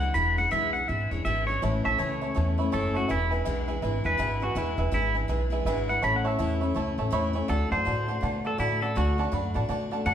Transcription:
0.00 E3 G#3 D4 E4 F#5
0.14 E1 E2 B2 E3 G#3 D4 E4 B5
0.38 E3 G#3 D4 E4 F#5
0.51 B1 E2 B2 E3 G#3 D4 E4 E5
0.73 E3 G#3 D4 E4 F#5
0.88 G#1 E3 G#3 D4 E4 E5
1.11 E1 E3 G#3 D4 E4 C#5
1.25 G#1 E2 B2 E3 G#3 D4 E4 E5
1.47 G#3 D4 E4 C#5
1.51 E3
1.62 A1 A2 E3 A3 C#4 E4 C#5 E5 A5
1.84 A1 A3 C#4 E4 C#5 E5 A5
1.98 C#2 A2 E3 A3 C#4 E4 C#5 E5 A5
2.21 A3 C#4 E4 C#5 E5 A5
2.35 E2 E3 A3 C#4 E4 C#5 E5 A5
2.58 A3 C#4 E4 C#5 E5 B5
2.72 F#1 A2 E3 A3 C#4 E4 A4 C#5 E5 A5
2.94 A3 C#4 E4 F#4 C#5 E5 A5
3.08 E1 E2 B2 E3 G#3 D4 E4 B4 E5 G#5
3.30 E3 G#3 D4 E4 B4 E5 G#5
3.44 B1 E2 B2 E3 G#3 D4 E4 B4 E5 G#5
3.68 E3 G#3 D4 E4 B4 E5 G#5
3.82 G#1 E3 G#3 D4 E4 B4 E5 G#5
4.04 E1 E3 G#3 D4 E4 B4 E5 G#5
4.18 G#1 E2 B2 E3 G#3 D4 E4 B4 E5 G#5
4.40 E3 G#3 D4 E4 F#4 B4 E5 G#5
4.55 E1 E2 B2 E3 G#3 D4 E4 B4 E5 G#5
4.77 E1 E3 G#3 D4 E4 B4 E5 G#5
4.91 G#1 E2 B2 E3 G#3 D4 E4 B4 E5 G#5
5.14 E3 G#3 D4 E4 B4 E5 G#5
5.28 B1 E3 G#3 D4 E4 B4 E5 G#5
5.50 E3 G#3 D4 E4 B4 E5 G#5
5.65 G#1 E2 B2 E3 G#3 D4 E4 B4 E5 G#5
5.87 G#3 D4 E4 B4 E5 F#5 B5
5.92 E3
6.02 A1 A2 E3 A3 C#4 E4 C#5 E5 A5 B5
6.16 F#5
6.24 A3 C#4 E4 C#5 E5 A5
6.39 E2 A2 E3 A3 C#4 E4 C#5 E5 A5
6.61 A3 C#4 E4 C#5 E5 B5
6.75 C#2 E3 A3 C#4 E4 C#5 E5 A5
6.98 A1 A3 C#4 E4 C#5 E5 A5
7.11 E2 A2 E3 A3 C#4 E4 C#5 E5 B5
7.33 A3 C#4 E4 C#5 E5 G#5
7.48 D2 D3 A3 D4 F#4 A4 D5 F#5 A5
7.72 F#2 A3 D4 F#4 C5 D5 F#5 A5
7.85 A2 D3 A3 D4 F#4 D5 F#5 A5
8.08 A3 D4 F#4 D5 F#5 A5
8.21 B2 D3 A3 D4 F#4 D5 F#5 A5
8.44 A3 D4 F#4 A4 D5 F#5 A5
8.58 A2 D3 A3 D4 E4 F#4 D5 F#5 A5
8.82 A3 D4 F#4 A4 D5 F#5 A5
8.95 D2 D3 A3 D4 F#4 D5 F#5 A5
9.18 A3 D4 F#4 D5 F#5 A5
9.32 F#2 D3 A3 D4 F#4 D5 F#5 B5
9.54 A2 A3 D4 F#4 D5 F#5 A5
9.69 B2 D3 A3 D4 F#4 D5 F#5 A5
9.91 A3 D4 F#4 D5 F#5 A5
10.06 F#2 D3 A3 D4 F#4 D5 F#5 A5

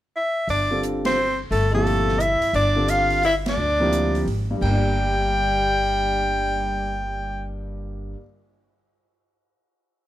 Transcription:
0.16 E5
0.47 G1 D4 D5, open hi-hat
0.70 D3 G3 C4 F4 A4
0.83 closed hi-hat
1.05 C4 C5, snare, ride
1.51 G1 A3 A4, open hi-hat
1.71 A#2 C3 F3 A3 E4 G4 A4
1.87 open hi-hat
2.08 snare
2.20 E4 E5, closed hi-hat
2.42 muted upright bass stroke, open hi-hat
2.53 G1 D4 D5, open hi-hat
2.75 D3 G3 C4 F4 A4
2.88 F4 F5, closed hi-hat
3.10 open hi-hat
3.23 E4 E5, open hi-hat
3.46 D4 D5, snare, ride
3.57 D2
3.80 C3 F3 A#3 E4 G4
3.93 closed hi-hat
4.15 open hi-hat
4.26 G#1, open hi-hat
4.51 G2
4.57 G3
4.61 G1 G3 A#3 G5, kick, crash
4.70 D4
4.75 D5
4.84 cymbal swell

